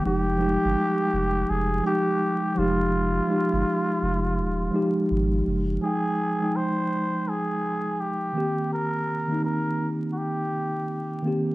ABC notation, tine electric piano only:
X:1
M:4/4
L:1/16
Q:"Swing 16ths" 1/4=83
K:Fm
V:1 name="Tine electric piano"
[F,A,EG]2 [F,G,A,EG]6- [F,G,A,EG] z [F,A,EG]4 [F,G,A,EG]2- | [F,G,A,EG] z [F,A,EG]6- [F,A,EG] z [F,A,EG]4- [F,A,EG] z | [F,A,Eg]3 [F,A,Eg]6- [F,A,Eg] z4 [E,B,CG]2- | [E,B,CG]2 z [E,B,CE]6- [E,B,CE] z4 [E,B,CG]2 |]